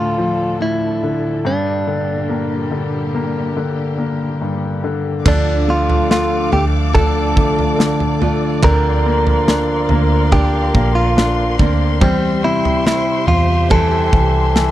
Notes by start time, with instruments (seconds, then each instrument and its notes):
Already playing: grand piano D2 A2 D3, string section A2 D3 F3 D4 A4, clean electric guitar F4
0.18 grand piano F3
0.60 grand piano A2, clean electric guitar E4
1.03 grand piano D3
1.45 grand piano G2, string section A#2 G3 G4, clean electric guitar D4
1.87 grand piano D3
2.29 grand piano A#3
2.71 grand piano D3
3.15 grand piano A#3
3.57 grand piano D3
3.98 grand piano A#3
4.42 grand piano G2
4.84 grand piano D3
5.25 fingered electric bass D2, steel-string acoustic guitar D3 F3 D4 F4 A4, grand piano D3, clean electric guitar D4, string section A4 D5 F5 D6, kick, floor tom, crash
5.68 grand piano A3, clean electric guitar F4
5.90 floor tom
6.10 grand piano D3, clean electric guitar F4, snare
6.52 fingered electric bass D2, grand piano A3, clean electric guitar G4, floor tom
6.94 grand piano D3, steel-string acoustic guitar F3 D4 F4 A4, clean electric guitar A4, kick, floor tom
7.36 fingered electric bass C2, grand piano A3, kick
7.59 floor tom
7.79 grand piano D3, snare
8.00 floor tom
8.21 grand piano A3, steel-string acoustic guitar D4 F4 A4, floor tom
8.62 fingered electric bass D2, steel-string acoustic guitar D3 F3 C4 D4 A#4, grand piano D3, string section A#4 F5 C6, clean electric guitar A#4, kick, floor tom
9.06 grand piano A#3
9.27 floor tom
9.48 grand piano D4, snare
9.89 fingered electric bass D2, grand piano A#3, floor tom
10.32 steel-string acoustic guitar F3 C4 D4 A#4, grand piano D4, clean electric guitar G4, kick, floor tom
10.74 fingered electric bass A#1, grand piano A#3, kick
10.95 clean electric guitar F4
11.17 grand piano D4, snare
11.58 fingered electric bass D2, grand piano A#3, steel-string acoustic guitar C4 D4 A#4, kick, floor tom
12.01 fingered electric bass E2, steel-string acoustic guitar G3 C4 G4, grand piano G3, clean electric guitar C4, string section G4 C5 E5, kick, floor tom
12.44 grand piano C3, clean electric guitar E4
12.65 floor tom
12.87 clean electric guitar E4, snare
13.28 fingered electric bass E2, clean electric guitar F4, floor tom
13.70 grand piano E3, steel-string acoustic guitar G3 C4 E4 G4, clean electric guitar A4, kick, floor tom
14.13 fingered electric bass C2, grand piano E3, kick
14.56 grand piano E3, snare